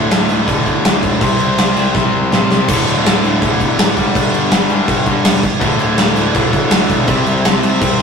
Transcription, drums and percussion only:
0.11 snare, crash
0.29 crash
0.48 kick, crash
0.66 kick, crash
0.85 snare, crash
1.03 kick, crash
1.21 kick, crash
1.40 crash
1.58 snare, crash
1.77 crash
1.95 kick, snare
2.32 snare
2.50 snare
2.68 kick, crash
2.87 crash
3.06 snare, crash
3.24 crash
3.42 kick, crash
3.60 kick, crash
3.79 snare, crash
3.97 kick, crash
4.15 kick, crash
4.34 crash
4.51 snare, crash
4.70 crash
4.88 kick, crash
5.06 kick, crash
5.25 snare, crash
5.43 kick, crash
5.61 kick, crash
5.79 crash
5.98 snare, crash
6.16 crash
6.35 kick, crash
6.53 kick, crash
6.71 snare, crash
6.90 kick, crash
7.07 kick, crash
7.26 crash
7.45 snare, crash
7.63 crash
7.81 kick, crash

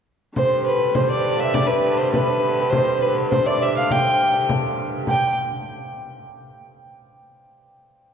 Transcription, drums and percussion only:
0.36 frame drum
0.95 frame drum
1.25 frame drum
1.54 frame drum
2.14 frame drum
2.43 frame drum
2.73 frame drum
3.32 frame drum
3.62 frame drum
3.91 frame drum
4.22 frame drum
4.49 frame drum
5.07 frame drum

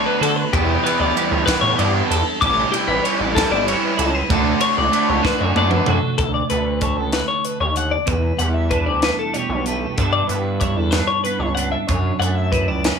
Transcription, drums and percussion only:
0.23 ride
0.53 kick, ride
0.86 ride
1.17 ride
1.48 kick, snare, ride
1.79 ride
2.11 ride
2.42 kick, ride
2.74 ride
3.05 ride
3.37 kick, snare, ride
3.68 ride
3.99 ride
4.30 kick, ride
4.61 ride
4.93 ride
5.25 kick, snare
5.56 high tom
5.71 mid tom
5.86 mid tom
6.18 kick, closed hi-hat
6.50 closed hi-hat
6.81 kick, closed hi-hat
7.13 snare, closed hi-hat
7.45 closed hi-hat
7.76 closed hi-hat
8.07 kick, closed hi-hat
8.39 closed hi-hat
8.71 kick, closed hi-hat
9.02 snare, closed hi-hat
9.34 closed hi-hat
9.66 closed hi-hat
9.98 kick, closed hi-hat
10.29 closed hi-hat
10.61 kick, closed hi-hat
10.92 snare, closed hi-hat
11.25 closed hi-hat
11.57 closed hi-hat
11.89 kick, closed hi-hat
12.22 closed hi-hat
12.53 kick, closed hi-hat
12.84 snare, closed hi-hat

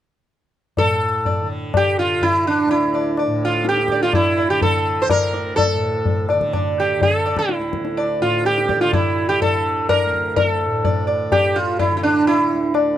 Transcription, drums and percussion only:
0.77 tabla tin, tabla ge
1.25 tabla tin, tabla ge
1.74 tabla na, tabla ge
2.22 tabla tin, tabla ge
2.69 tabla na
2.94 tabla na
3.17 tabla na
3.65 tabla te
3.77 tabla te
3.88 tabla ke
4.01 tabla te
4.13 tabla na, tabla ge
4.62 tabla tin, tabla ge
5.09 tabla na, tabla ge
5.34 tabla te
5.58 tabla tin, tabla ge
6.05 tabla tin, tabla ge
6.29 tabla na
6.41 tabla ke
6.53 tabla na, tabla ge
7.01 tabla tin, tabla ge
7.25 tabla na
7.37 tabla ke
7.49 tabla te
7.62 tabla te
7.73 tabla ke
7.85 tabla te
7.98 tabla na
8.45 tabla te
8.58 tabla te
8.69 tabla ke
8.81 tabla te
8.93 tabla na, tabla ge
9.42 tabla tin, tabla ge
9.89 tabla na, tabla ge
10.13 tabla ge
10.36 tabla tin, tabla ge
10.84 tabla tin, tabla ge
11.08 tabla na
11.32 tabla na, tabla ge
11.79 tabla tin, tabla ge
12.03 tabla na
12.27 tabla na
12.75 tabla na

